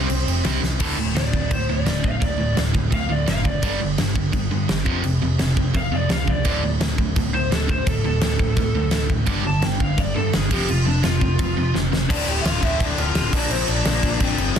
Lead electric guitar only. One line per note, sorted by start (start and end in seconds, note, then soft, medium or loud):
0.00 0.42 C4 medium
0.00 0.42 C5 medium
1.17 1.51 D5 loud
1.52 1.69 C5 medium
1.71 2.04 D5 loud
2.05 2.22 F5 medium
2.23 2.56 D5 loud
2.94 3.12 F5 loud
3.12 3.28 D5 medium
3.30 3.46 F5 medium
3.46 3.63 D5 medium
3.64 3.81 D5 loud
5.77 5.93 F5 medium
5.95 6.11 D5 medium
6.13 6.29 F5 medium
6.30 6.46 D5 loud
6.47 6.63 D5 loud
7.34 7.51 C5 loud
7.53 7.69 A4 medium
7.70 7.87 C5 medium
7.89 8.05 A4 loud
8.06 9.08 A4 loud
9.28 9.45 D6 loud
9.47 9.64 A5 medium
9.64 9.82 G5 loud
9.82 10.00 F5 loud
10.00 10.16 D5 medium
10.15 10.33 A4 loud
10.33 10.50 G#4 medium
10.52 10.68 G4 loud
10.69 10.86 F4 loud
10.86 11.03 D4 loud
11.04 11.72 F4 loud
12.10 12.26 D4 medium
12.10 12.28 D5 loud
12.28 12.40 G4 medium
12.28 12.41 G5 loud
12.41 12.61 F4 medium
12.41 12.45 E5 medium
12.45 12.61 F5 medium
12.63 12.79 E4 medium
12.63 12.81 E5 loud
12.80 12.96 D4 medium
12.80 12.99 D5 medium
12.99 13.31 F4 medium
12.99 13.33 F5 medium
13.34 13.50 D4 medium
13.34 13.50 D5 medium
13.51 13.67 C4 medium
13.51 13.68 C5 loud
13.69 14.34 D4 medium
13.69 14.34 D5 medium